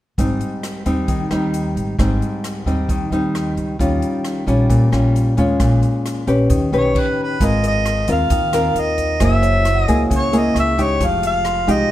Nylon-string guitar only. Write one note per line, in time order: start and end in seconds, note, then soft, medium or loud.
0.18 1.06 G#2 soft
0.18 0.82 G3 medium
0.18 0.82 C4 medium
0.18 0.83 D#4 medium
0.86 1.27 G3 medium
0.86 1.27 C4 medium
0.86 1.28 D#4 medium
1.08 1.96 D#3 medium
1.31 1.95 G3 medium
1.31 1.95 C4 medium
1.31 1.95 D#4 medium
1.99 2.87 G#2 medium
1.99 2.63 G3 soft
1.99 2.63 C4 soft
1.99 2.63 D#4 medium
2.66 3.08 G3 medium
2.66 3.08 C4 medium
2.66 3.08 D#4 medium
2.90 3.77 D#3 medium
3.12 3.76 G3 medium
3.12 3.76 C4 medium
3.12 3.76 D#4 medium
3.79 4.67 D#3 soft
3.79 4.43 G3 medium
3.79 4.44 C#4 medium
3.79 4.44 F4 medium
4.47 4.89 G3 medium
4.47 4.89 C#4 medium
4.47 4.89 F4 medium
4.69 5.57 A#2 medium
4.92 5.33 G3 medium
4.92 5.34 C#4 medium
4.92 5.34 F4 medium
5.37 6.24 G#3 medium
5.37 6.24 C#4 medium
5.37 6.24 F4 medium
5.59 6.47 A#2 medium
6.27 6.69 C#4 medium
6.27 6.69 G4 medium
6.27 6.69 B4 medium
6.50 7.38 D#3 medium
6.73 7.37 C#4 medium
6.73 7.37 G4 medium
6.73 7.37 B4 medium
7.41 8.28 G#3 soft
7.41 8.04 C4 soft
7.41 8.05 F4 soft
7.41 8.05 A#4 medium
8.08 8.49 C4 medium
8.08 8.50 F4 medium
8.08 8.50 A#4 medium
8.31 9.18 D#3 medium
8.54 9.17 C4 medium
8.54 9.17 F4 medium
8.54 9.17 A#4 medium
9.20 10.08 F#3 medium
9.20 9.65 A#3 medium
9.20 9.65 E4 soft
9.20 9.65 G#4 medium
9.88 10.29 A#3 medium
9.88 10.29 E4 medium
9.88 10.29 G#4 medium
10.10 10.98 C#3 medium
10.33 10.74 A#3 medium
10.33 10.74 E4 medium
10.33 10.75 G#4 medium
10.78 11.64 G#3 medium
10.78 11.65 D#4 medium
10.78 11.65 G4 medium
11.01 11.88 F3 medium
11.67 11.91 G#3 medium
11.67 11.91 D#4 medium
11.67 11.91 G4 medium